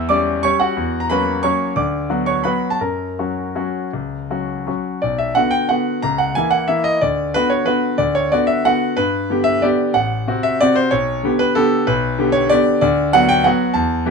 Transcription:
Already playing: E2 E5 E6
0.09 G3 C#4 D5 D6
0.43 G3 C#4 C#5 C#6
0.60 F#4 F#5
0.77 E2
1.00 A#5
1.09 F#3 A#3 C#4 B4 B5
1.43 F#3 A#3 C#4 C#5 C#6
1.76 D2 D5 D6
2.10 F#3 B3 F#4
2.26 C#5 C#6
2.44 F#3 B3 F#4 B4 B5
2.70 A5
2.80 F#2 A#4 A#5
3.19 F#3 C#4 F#4
3.55 F#3 C#4 F#4
3.93 C#2
4.30 F#3 C#4 F#4
4.67 F#3 C#4 F#4
5.02 B1 D5
5.18 E5
5.35 D3 B3 F#4 F#5
5.51 G5
5.69 D3 B3 F#4 F#5
6.03 C#2 A#5
6.18 F#5
6.35 E3 A#3 E4 G#5
6.51 F#5
6.68 E3 A#3 E4 E5
6.84 D#5
7.01 D2 D5
7.34 D3 B3 F#4 B4
7.50 C#5
7.66 D3 B3 F#4 B4
7.98 D2 D5
8.15 C#5
8.32 D3 B3 F#4 D5
8.47 E5
8.65 D3 B3 F#4 F#5
8.97 G2 B4
9.30 D3 B3 G4
9.44 E5
9.62 D3 B3 G4 D5
9.94 A1 F#5
10.28 C3 C4 F#4
10.43 E5
10.61 C3 C4 F#4 D5
10.76 C5
10.91 B1 C#5
11.23 D3 B3 G4
11.39 B4
11.55 D3 B3 G4 A4
11.87 B1 B4
12.19 D3 B3 G4
12.32 C#5
12.49 D3 B3 G4 D5
12.81 D2 D5
13.13 F#3 B3 F#4 F#5
13.29 G5
13.44 F#3 B3 F#4 F#5
13.74 E2 A5
14.06 E3 B3 G4

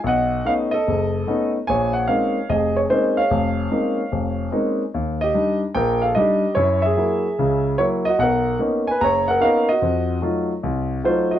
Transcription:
0.04 B1 F#5
0.08 D#5
0.45 A3 B3 C#4 D#4 F5
0.71 A4 D#5
0.87 F#1
1.27 A3 B3 C#4 D#4
1.67 A#1 C#5 G#5
1.93 F#5
2.07 G#3 A#3 C4 C#4 D#4 F5
2.49 F1 G#4 D#5
2.77 C#5
2.90 G#3 A#3 C4 C#4 D#4 C5
3.17 C#5 F5
3.31 F1
3.71 G#3 A#3 C4 C#4 D#4
4.12 F1
4.52 G#3 A#3 C4 C#4 D#4
4.94 D#2
5.21 G4 D#5
5.34 G3 D4 D#4
5.74 A#1 A#4 G5
6.02 A4 F5
6.15 G3 D4 D#4 G4 D#5
6.55 F#2 E4 C#5
6.82 G#4 E5
6.97 F#3 A#3 E4
7.39 C#2 C#3
7.78 F#3 A#3 E4 C#5
8.05 F#4 D#5
8.19 B1 F#5
8.23 A#4
8.59 A#3 B3 C#4 D#4
8.87 B4 G#5
9.01 F#1 C#5 A#5
9.28 A#4 F#5
9.40 A#3 B3 C#4 D#4 F5
9.45 A#4
9.69 F#4 D#5
9.82 F2
10.22 F#3 A3 D#4 F4
10.63 C2
11.04 F#3 A3 D#4 F4 C5
11.31 F#4 D#5

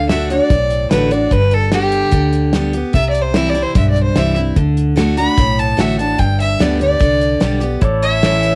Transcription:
Already playing: D2
0.09 D3 A3 D4 F#4 E5, snare, closed hi-hat
0.30 D4 F#4 D5, closed hi-hat
0.50 B1 A2, kick, closed hi-hat
0.70 closed hi-hat
0.91 A1 D3 A3 D4 F#4 B4, snare, closed hi-hat
1.11 D4 F#4 D5, closed hi-hat
1.31 G1 G2 B4, kick, closed hi-hat
1.51 A4, closed hi-hat
1.72 D3 G3 B3 G4, snare, closed hi-hat
1.92 closed hi-hat
2.11 D2 D3, kick, closed hi-hat
2.33 closed hi-hat
2.53 D3 G3 B3 G4, snare, closed hi-hat
2.73 B3 G4, closed hi-hat
2.93 C2 C3 E5, kick, closed hi-hat
3.09 D5
3.15 closed hi-hat
3.22 C5
3.34 E3 G3 C4 E4 E5, snare, closed hi-hat
3.50 D5
3.55 C4 E4, closed hi-hat
3.63 C5
3.75 B1 G2 E5, kick, closed hi-hat
3.90 D5
3.96 closed hi-hat
4.03 C5
4.16 C2 E3 G3 C4 E4 E5, snare, closed hi-hat
4.36 C4 E4, closed hi-hat
4.56 D2 D3, kick, closed hi-hat
4.77 closed hi-hat
4.96 D3 A3 D4 F#4, snare, closed hi-hat
5.17 D4 F#4 B5, closed hi-hat
5.38 B1 A2, kick, closed hi-hat
5.59 A5, closed hi-hat
5.77 A1 D3 A3 D4 F#4 E5, snare, closed hi-hat
5.98 D4 F#4 A5, closed hi-hat
6.18 G1 G2 G5, kick, closed hi-hat
6.40 E5, closed hi-hat
6.59 D2 D3 G3 B3 G4 D5, snare, closed hi-hat
6.79 B3 G4 D5, closed hi-hat
7.00 C2 D3, kick, closed hi-hat
7.21 closed hi-hat
7.40 B1 D3 G3 B3 G4, snare, closed hi-hat
7.60 B3 G4, closed hi-hat
7.81 A1 A2 E4 A4 D5, kick, closed hi-hat
8.02 C#5 E5, closed hi-hat
8.22 E3 A3 C#4 E4, snare, closed hi-hat
8.43 closed hi-hat

